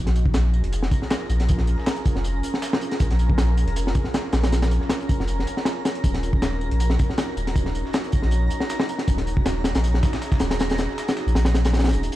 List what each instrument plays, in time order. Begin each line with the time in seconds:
Already playing: sub bass A#1, ambient pad C#4 F4 G#4 A#4, synth texture A#5
0.07 snare, closed hi-hat
0.16 closed hi-hat, tambourine
0.26 kick
0.34 snare, closed hi-hat, tambourine
0.54 tambourine
0.64 sub bass F1, closed hi-hat
0.73 closed hi-hat, tambourine
0.83 snare
0.91 kick, closed hi-hat, tambourine
1.02 snare
1.10 snare, closed hi-hat, tambourine
1.29 sub bass A#1, closed hi-hat, tambourine
1.40 snare, closed hi-hat
1.48 kick, closed hi-hat, tambourine
1.58 snare
1.67 closed hi-hat, tambourine
1.78 snare
1.86 snare, closed hi-hat, tambourine
1.96 closed hi-hat
2.05 kick, closed hi-hat, tambourine
2.16 sub bass F1, snare
2.24 closed hi-hat, tambourine
2.43 closed hi-hat, tambourine
2.54 snare
2.62 snare, closed hi-hat, tambourine
2.73 snare
2.81 closed hi-hat, tambourine
2.91 snare, closed hi-hat
3.00 sub bass A#1, kick, closed hi-hat, tambourine
3.10 snare, closed hi-hat
3.19 closed hi-hat, tambourine
3.29 kick
3.38 snare, closed hi-hat, tambourine
3.57 closed hi-hat, tambourine
3.67 sub bass F1, closed hi-hat
3.76 closed hi-hat, tambourine
3.87 snare
3.95 kick, closed hi-hat, tambourine
4.04 snare
4.14 snare, closed hi-hat, tambourine
4.32 sub bass A#1, snare, closed hi-hat, tambourine
4.43 snare, closed hi-hat
4.52 snare, closed hi-hat, tambourine
4.62 snare, closed hi-hat
4.71 closed hi-hat, tambourine
4.81 snare
4.89 snare, closed hi-hat, tambourine
5.01 closed hi-hat
5.09 kick, closed hi-hat, tambourine
5.19 sub bass F1, snare
5.27 closed hi-hat, tambourine
5.39 snare
5.47 closed hi-hat, tambourine
5.57 snare
5.65 snare, closed hi-hat, tambourine
5.85 snare, closed hi-hat, tambourine
5.95 closed hi-hat
6.04 sub bass D#1, ambient pad D#4 F#4, kick, closed hi-hat, tambourine
6.14 snare, closed hi-hat
6.23 closed hi-hat, tambourine
6.33 kick
6.42 snare, closed hi-hat, tambourine
6.61 tambourine
6.71 sub bass A#1, closed hi-hat
6.80 closed hi-hat, tambourine
6.90 snare
6.99 kick, closed hi-hat, tambourine
7.10 snare
7.18 snare, closed hi-hat, tambourine
7.37 sub bass D#1, closed hi-hat, tambourine
7.47 snare, closed hi-hat
7.56 kick, closed hi-hat, tambourine
7.66 snare
7.75 closed hi-hat, tambourine
7.85 snare
7.93 snare, closed hi-hat, tambourine
8.04 closed hi-hat
8.12 kick, closed hi-hat, tambourine
8.22 sub bass A#1, snare
8.31 closed hi-hat, tambourine
8.50 closed hi-hat, tambourine
8.60 snare
8.69 snare, closed hi-hat, tambourine
8.80 snare
8.89 closed hi-hat, tambourine
8.98 snare, closed hi-hat
9.07 sub bass D#1, ambient pad G#4, kick, closed hi-hat, tambourine
9.18 snare, closed hi-hat
9.27 closed hi-hat, tambourine
9.37 kick
9.46 snare, closed hi-hat, tambourine
9.64 snare, closed hi-hat, tambourine
9.75 sub bass A#1, snare, closed hi-hat
9.84 closed hi-hat, tambourine
9.94 snare
10.03 kick, snare, closed hi-hat, tambourine
10.13 snare, tambourine
10.22 snare, closed hi-hat, tambourine
10.32 kick, snare, tambourine
10.39 sub bass D#1, snare, closed hi-hat, tambourine
10.50 snare, closed hi-hat
10.59 snare, closed hi-hat, tambourine
10.70 snare, closed hi-hat
10.78 snare, closed hi-hat, tambourine
10.89 snare
10.98 snare, closed hi-hat, tambourine
11.08 snare, closed hi-hat
11.17 snare, tambourine
11.27 sub bass A#1, closed hi-hat
11.35 sub bass A#1, snare, closed hi-hat
11.45 snare, closed hi-hat
11.54 snare, closed hi-hat
11.65 snare, closed hi-hat, tambourine
11.73 snare, closed hi-hat
11.79 snare, closed hi-hat
11.84 snare, closed hi-hat
11.88 snare, closed hi-hat
11.93 sub bass D#1, closed hi-hat, tambourine
12.03 closed hi-hat
12.11 ambient pad C#4 F4 G#4 A#4, closed hi-hat